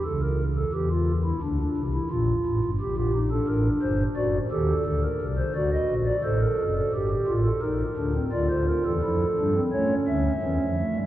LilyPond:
<<
  \new Staff \with { instrumentName = "Pipe organ" } { \time 4/4 \key d \phrygian \tempo 4 = 87 << { r1 | r16 g'8 a'16 bes'8 c''8 d''8 g'8 a'16 bes'8 c''16 | d''16 ees''8 d''16 c''16 bes'8 a'16 r16 g'8 a'16 bes'4 | d''16 c''16 bes'16 a'4~ a'16 cis''8 e''4. | } \\ { a'16 bes'8 a'16 g'16 f'8 e'16 d'16 d'8 e'16 f'4 | g'16 f'16 ees'16 d'4~ d'16 fis'8 a'4. | fis'4 a'4 g'8 f'8 ees'8 d'16 c'16 | f'4 e'8 d'16 c'16 cis'4 cis'8 a8 | } >> }
  \new Staff \with { instrumentName = "Pipe organ" } { \clef bass \time 4/4 \key d \phrygian <cis, cis>4 <e, e>4 <d, d>8 <c, c>8 <bes,, bes,>8 <a,, a,>16 <g,, g,>16 | <bes,, bes,>4 <a,, a,>8 <g,, g,>8 <fis,, fis,>8 <ees, ees>8 <d, d>8 <c, c>8 | <d, d>8 <bes,, bes,>8 <a,, a,>8 <fis,, fis,>8 <g,, g,>8 <a,, a,>8 <bes,, bes,>8 <d, d>8 | <d, d>16 <d, d>8 <e, e>16 <f, f>8 <g, g>8 a8 <d, d>8 <e, e>16 <f, f>8 <g, g>16 | }
>>